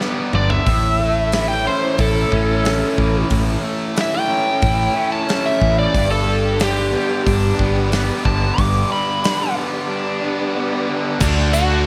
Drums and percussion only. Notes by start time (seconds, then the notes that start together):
0.01 snare
0.33 mid tom
0.50 floor tom
0.66 kick, open hi-hat
1.32 snare, open hi-hat
1.98 kick, open hi-hat
2.32 kick
2.65 snare, open hi-hat
2.98 kick
3.30 kick, open hi-hat
3.96 snare, open hi-hat
4.62 kick, open hi-hat
5.29 snare, open hi-hat
5.62 kick
5.94 kick, open hi-hat
6.60 snare, open hi-hat
7.27 kick, open hi-hat
7.59 kick
7.92 snare, open hi-hat
8.25 kick
8.58 kick, open hi-hat
9.24 snare, open hi-hat
11.20 kick, crash, shaker
11.39 snare
11.53 crash, shaker